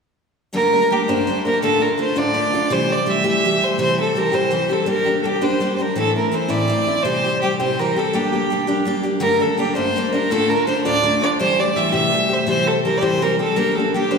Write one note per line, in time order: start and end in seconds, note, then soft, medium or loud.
0.53 0.72 G2 medium
0.53 0.73 D3 medium
0.53 0.73 G3 medium
0.53 0.72 A3 medium
0.53 0.72 A#3 medium
0.53 0.71 D4 medium
0.53 0.94 A#4 loud
0.72 0.89 G3 soft
0.72 0.90 A3 soft
0.72 0.90 A#3 soft
0.72 0.90 D4 soft
0.90 1.08 G3 medium
0.90 1.08 A3 medium
0.90 1.08 A#3 soft
0.90 1.07 D4 medium
0.90 1.11 G4 medium
1.08 1.28 G2 soft
1.08 1.28 D3 medium
1.08 1.26 G3 medium
1.08 1.28 A3 medium
1.08 1.27 A#3 medium
1.08 1.27 D4 medium
1.08 1.45 C5 medium
1.27 1.44 G3 medium
1.27 1.44 A3 medium
1.27 1.45 A#3 medium
1.27 1.44 D4 medium
1.45 1.62 G3 soft
1.45 1.62 A3 soft
1.45 1.63 A#3 soft
1.45 1.62 D4 soft
1.45 1.61 A#4 medium
1.62 1.81 D2 medium
1.62 1.82 A2 medium
1.62 1.80 D3 medium
1.62 1.80 A3 medium
1.62 1.79 D4 medium
1.62 1.79 F4 medium
1.62 1.84 A4 medium
1.80 1.96 D3 soft
1.80 1.97 A3 soft
1.80 1.98 D4 soft
1.80 1.98 F4 soft
1.80 1.99 A#4 medium
1.98 2.15 D3 medium
1.98 2.15 A3 medium
1.98 2.15 D4 soft
1.98 2.14 F4 soft
1.98 2.19 C5 medium
2.16 2.36 D2 soft
2.16 2.36 A2 medium
2.16 2.33 D3 medium
2.16 2.33 A3 medium
2.16 2.34 D4 medium
2.16 2.35 F4 medium
2.16 2.74 D5 loud
2.34 2.52 D3 medium
2.34 2.52 A3 medium
2.34 2.52 D4 medium
2.34 2.52 F4 medium
2.53 2.70 D3 soft
2.53 2.70 A3 soft
2.53 2.71 D4 medium
2.53 2.70 F4 medium
2.70 2.90 C3 medium
2.70 2.90 E3 medium
2.70 2.89 G3 medium
2.70 2.89 A3 medium
2.70 2.87 G4 medium
2.70 2.94 C5 loud
2.89 3.05 G3 soft
2.89 3.06 A3 soft
2.89 3.07 G4 soft
2.89 3.11 D5 medium
3.06 3.23 E3 medium
3.06 3.23 G3 medium
3.06 3.23 A3 medium
3.06 3.23 G4 medium
3.06 3.26 E5 medium
3.24 3.45 C3 soft
3.24 3.43 E3 soft
3.24 3.44 G3 medium
3.24 3.44 A3 medium
3.24 3.44 G4 medium
3.28 3.66 E5 medium
3.44 3.62 E3 medium
3.44 3.62 G3 medium
3.44 3.61 A3 medium
3.44 3.60 G4 medium
3.61 3.78 G3 soft
3.61 3.79 A3 soft
3.61 3.78 G4 soft
3.61 3.80 C5 medium
3.78 3.98 C3 medium
3.78 3.98 E3 medium
3.78 3.99 G3 medium
3.78 3.98 C4 medium
3.78 3.97 G4 medium
3.78 3.98 C5 loud
3.98 4.15 G3 soft
3.98 4.15 C4 soft
3.98 4.16 G4 soft
3.98 4.20 A4 medium
4.15 4.33 E3 medium
4.15 4.32 G3 soft
4.15 4.32 C4 medium
4.15 4.31 G4 medium
4.15 4.36 A#4 medium
4.32 4.53 C3 medium
4.32 4.49 E3 medium
4.32 4.50 G3 medium
4.32 4.51 C4 medium
4.32 4.52 G4 medium
4.32 4.74 C5 medium
4.51 4.69 E3 medium
4.51 4.70 G3 medium
4.51 4.70 C4 medium
4.51 4.68 G4 medium
4.69 4.85 G3 soft
4.69 4.87 C4 soft
4.69 4.86 G4 medium
4.69 4.88 A4 medium
4.86 5.07 G3 medium
4.86 5.07 A#3 medium
4.86 5.05 D4 medium
4.86 5.04 G4 medium
4.86 5.19 A#4 medium
5.06 5.24 A#3 soft
5.06 5.24 D4 soft
5.06 5.24 G4 soft
5.22 5.41 G3 soft
5.22 5.41 A#3 medium
5.22 5.40 D4 soft
5.22 5.45 G4 medium
5.22 5.40 G4 medium
5.22 5.27 A4 soft
5.41 5.59 G3 medium
5.41 5.60 A#3 medium
5.41 5.60 D4 medium
5.41 5.61 G4 medium
5.41 5.75 C5 medium
5.60 5.78 G3 medium
5.60 5.79 A#3 medium
5.60 5.78 D4 medium
5.60 5.77 G4 medium
5.76 5.96 D4 soft
5.76 5.96 G4 medium
5.76 5.83 C5 medium
5.81 5.96 A#3 soft
5.81 5.97 A#4 medium
5.95 6.16 A2 medium
5.95 6.16 E3 medium
5.95 6.15 A3 medium
5.95 6.16 C4 medium
5.95 6.15 E4 medium
5.95 6.15 A4 medium
6.16 6.32 A3 soft
6.16 6.31 C4 soft
6.16 6.33 E4 soft
6.16 6.37 A#4 medium
6.31 6.48 E3 medium
6.31 6.48 A3 medium
6.31 6.48 C4 medium
6.31 6.47 E4 medium
6.31 6.52 C5 medium
6.48 6.70 A2 medium
6.48 6.67 E3 medium
6.48 6.68 A3 medium
6.48 6.68 C4 medium
6.48 6.69 E4 medium
6.48 7.04 D5 medium
6.68 6.87 E3 medium
6.68 6.87 A3 medium
6.68 6.87 C4 medium
6.68 6.86 E4 medium
6.87 7.05 A3 soft
6.87 7.04 C4 soft
6.87 7.05 E4 medium
7.03 7.24 C3 medium
7.03 7.24 E3 medium
7.03 7.25 G3 medium
7.03 7.24 C4 medium
7.03 7.23 G4 medium
7.03 7.41 C5 loud
7.24 7.42 G3 soft
7.24 7.42 C4 soft
7.24 7.42 G4 soft
7.41 7.59 E3 medium
7.41 7.59 G3 medium
7.41 7.58 C4 medium
7.41 7.58 G4 medium
7.60 7.79 C3 medium
7.60 7.78 E3 medium
7.60 7.79 G3 soft
7.60 7.79 C4 medium
7.60 7.79 G4 medium
7.60 7.81 C5 medium
7.79 7.97 E3 medium
7.79 7.97 G3 medium
7.79 7.96 C4 medium
7.79 7.95 G4 medium
7.79 8.00 A#4 medium
7.96 8.12 G3 soft
7.96 8.14 C4 soft
7.96 8.14 G4 medium
7.96 8.16 A4 medium
8.13 8.33 G3 medium
8.13 8.33 A#3 medium
8.13 8.32 D4 medium
8.13 8.31 G4 medium
8.13 8.88 G4 medium
8.33 8.51 A#3 soft
8.33 8.51 D4 soft
8.33 8.50 G4 soft
8.50 8.67 G3 medium
8.50 8.67 A#3 medium
8.50 8.67 D4 medium
8.50 8.66 G4 medium
8.67 8.84 G3 medium
8.67 8.85 A#3 medium
8.67 8.86 D4 medium
8.67 8.86 G4 medium
8.85 9.04 G3 medium
8.85 9.04 A#3 medium
8.85 9.03 D4 medium
8.85 9.02 G4 medium
9.03 9.20 A#3 soft
9.03 9.20 D4 medium
9.03 9.21 G4 medium
9.20 9.41 G2 medium
9.20 9.41 D3 medium
9.20 9.41 G3 medium
9.20 9.39 A3 medium
9.20 9.40 A#3 medium
9.20 9.38 D4 medium
9.20 9.43 A#4 medium
9.40 9.56 G3 soft
9.40 9.58 A3 soft
9.40 9.57 A#3 soft
9.40 9.58 D4 soft
9.40 9.58 A4 medium
9.58 9.76 G3 soft
9.58 9.74 A3 medium
9.58 9.75 A#3 medium
9.58 9.74 D4 medium
9.58 9.74 G4 medium
9.75 9.96 G2 medium
9.75 9.96 D3 medium
9.75 9.95 G3 medium
9.75 9.95 A3 medium
9.75 9.96 A#3 medium
9.75 9.95 D4 medium
9.75 10.10 C5 medium
9.96 10.13 G3 medium
9.96 10.12 A3 medium
9.96 10.13 A#3 medium
9.96 10.11 D4 medium
10.12 10.31 G3 soft
10.12 10.31 A3 soft
10.12 10.31 A#3 soft
10.12 10.30 D4 medium
10.12 10.32 A#4 medium
10.31 10.50 D2 medium
10.31 10.51 A2 medium
10.31 10.51 D3 medium
10.31 10.50 A3 medium
10.31 10.50 D4 medium
10.31 10.49 F4 medium
10.31 10.51 A4 loud
10.50 10.66 D3 soft
10.50 10.66 A3 soft
10.50 10.67 D4 soft
10.50 10.67 F4 soft
10.50 10.66 A#4 medium
10.66 10.85 D3 soft
10.66 10.85 A3 medium
10.66 10.84 D4 medium
10.66 10.84 F4 medium
10.66 10.83 C5 medium
10.84 11.05 D2 soft
10.84 11.05 A2 medium
10.84 11.02 D3 medium
10.84 11.02 A3 medium
10.84 11.04 D4 medium
10.84 11.04 F4 medium
10.84 11.19 D5 loud
11.03 11.21 D3 medium
11.03 11.21 A3 medium
11.03 11.21 D4 medium
11.03 11.20 F4 medium
11.21 11.39 D3 soft
11.21 11.39 A3 soft
11.21 11.40 D4 soft
11.21 11.39 F4 soft
11.21 11.30 D5 medium
11.39 11.59 C3 medium
11.39 11.59 E3 medium
11.39 11.59 G3 medium
11.39 11.59 A3 medium
11.39 11.58 G4 medium
11.39 11.61 C5 loud
11.59 11.76 G3 soft
11.59 11.77 A3 soft
11.59 11.76 G4 soft
11.59 11.78 D5 medium
11.76 11.92 E3 medium
11.76 11.92 G3 medium
11.76 11.91 A3 medium
11.76 11.91 G4 medium
11.76 11.93 E5 medium
11.92 12.13 C3 medium
11.92 12.11 E3 medium
11.92 12.12 G3 medium
11.92 12.13 A3 medium
11.92 12.13 G4 medium
11.92 12.35 E5 loud
12.12 12.30 E3 medium
12.12 12.30 G3 medium
12.12 12.29 A3 medium
12.12 12.28 G4 medium
12.29 12.47 G3 soft
12.29 12.47 A3 soft
12.29 12.47 G4 medium
12.34 12.48 C5 medium
12.47 12.67 C3 medium
12.47 12.67 E3 medium
12.47 12.67 G3 medium
12.47 12.66 C4 medium
12.47 12.65 G4 medium
12.47 12.69 C5 loud
12.66 12.84 G3 soft
12.66 12.84 C4 soft
12.66 12.84 G4 soft
12.66 12.84 A4 medium
12.85 13.01 E3 soft
12.85 13.01 G3 medium
12.85 13.01 C4 medium
12.85 13.00 G4 medium
12.85 12.99 A#4 medium
12.98 13.21 G4 medium
12.98 13.04 D5 medium
13.02 13.22 C3 medium
13.02 13.21 E3 medium
13.02 13.21 G3 medium
13.02 13.22 C4 medium
13.02 13.24 C5 medium
13.22 13.39 E3 medium
13.22 13.39 G3 medium
13.22 13.39 C4 medium
13.22 13.38 G4 medium
13.22 13.40 A#4 medium
13.39 13.55 G3 soft
13.39 13.57 C4 medium
13.39 13.56 G4 medium
13.39 13.58 A4 medium
13.56 13.76 G3 medium
13.56 13.76 A#3 medium
13.56 13.76 D4 medium
13.56 13.76 G4 medium
13.56 13.71 A#4 loud
13.71 13.93 A4 medium
13.71 13.77 A#4 medium
13.77 13.94 A#3 soft
13.77 13.94 D4 soft
13.77 13.94 G4 soft
13.94 14.11 G3 medium
13.94 14.10 A#3 medium
13.94 14.10 D4 medium
13.94 14.13 G4 medium
13.94 14.09 G4 medium
14.11 14.18 G3 soft
14.11 14.18 A#3 medium
14.11 14.18 D4 medium
14.11 14.18 G4 medium
14.11 14.18 C5 medium